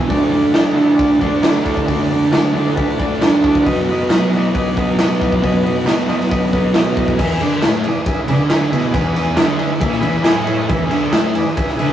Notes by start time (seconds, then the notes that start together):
0.08 D3 A3 F#4 A4 D5, kick, open hi-hat
0.13 D4
0.29 D4 F#4 A4 D5, open hi-hat
0.35 A3
0.52 D3 A3 F#4 A4 D5, snare, clap, open hi-hat
0.58 D4
0.73 D4 F#4 A4 E5
0.77 A3, open hi-hat
0.95 F#4 A4 D5
0.99 kick, open hi-hat
1.19 D4 F#4 A4 D5, kick, open hi-hat
1.25 A3
1.43 D3 A3 D4 F#4 A4 D5, snare, clap, open hi-hat
1.65 F#4 A4 D5, kick, open hi-hat
1.77 kick
1.86 D3 A3 F#4 A4 D5, kick, open hi-hat
1.91 D4
2.09 D4 F#4 A4 D5, open hi-hat
2.13 A3
2.32 D3 A3 F#4 A4 D5, snare, clap, open hi-hat
2.36 D4
2.53 D4 F#4 A4 D5, open hi-hat
2.58 A3
2.75 F#4 A4 B4, kick, open hi-hat
2.99 D4 F#4 A4 D5, kick, open hi-hat
3.03 A3
3.21 D3 A3 F#4 A4 D5, snare, clap, open hi-hat
3.25 D4
3.43 F#4 A4 D5, kick, open hi-hat
3.55 kick
3.63 B2 F#4 B4 D#5, kick, open hi-hat
3.68 F#3 B3
3.88 B3 F#4 B4 D#5, open hi-hat
3.92 F#3
4.09 B2 F#3 F#4 B4 D#5, snare, clap, open hi-hat
4.15 B3
4.33 B3 F#4 B4 D#5, open hi-hat
4.37 F#3
4.54 F#4 B4 D#5, kick, open hi-hat
4.77 B3 F#4 B4 D#5, kick, open hi-hat
4.82 F#3
4.98 B2 F#3 F#4 B4 D#5, snare, clap, open hi-hat
5.03 B3
5.21 F#4 B4 D#5, kick, open hi-hat
5.32 kick
5.42 B2 F#3 F#4 B4 D#5, kick, open hi-hat
5.46 B3
5.63 B3 F#4 B4 D#5, open hi-hat
5.69 F#3
5.85 B2 F#3 F#4 B4 D#5, snare, clap, open hi-hat
5.90 B3
6.08 B3 F#4 B4 D#5, clap, open hi-hat
6.13 F#3
6.21 snare
6.29 F#4 B4 D#5, kick, open hi-hat
6.53 B3 F#4 B4 D#5, kick, open hi-hat
6.57 F#3
6.73 B2 F#3 F#4 B4 D#5, snare, clap, open hi-hat
6.78 B3
6.97 F#4 B4 D#5, kick, open hi-hat
7.08 kick
7.18 E2 G#4 B4 E5, kick, crash
7.41 D3 G#4 B4 D5, ride
7.62 A2 G#4 B4 E5, snare, clap, ride
7.84 G#4 B4 D5, muted distorted electric guitar stroke, ride
8.06 G#4 B4 E5, kick, ride
8.28 D3 G#4 B4 D5, ride
8.50 G#4 B4 E5, snare, clap, ride
8.71 B2 G#4 B4 E5, ride
8.91 E2 G#4 B4 F#5, kick, ride
9.13 G#4 B4 E5, ride
9.36 D3 G#4 B4 E5, snare, clap, ride
9.58 G#4 B4 E5, ride
9.80 A#2 G#4 B4 E5, kick, ride
9.92 snare
10.00 E2 G#4 B4 E5 B5, ride
10.24 A2 G#4 B4 E5 G#5, snare, clap, ride
10.46 G#4 B4 C#5 E5, ride
10.68 E2 G#4 B4 E5, kick, ride
10.90 D3 G#4 B4 E5, ride
11.11 A2 G#4 B4 E5, snare, clap, ride
11.35 G#4 B4 D5, muted distorted electric guitar stroke, ride
11.56 G#4 B4 E5, kick, ride
11.68 snare
11.77 D3 G#4 B4 E5, ride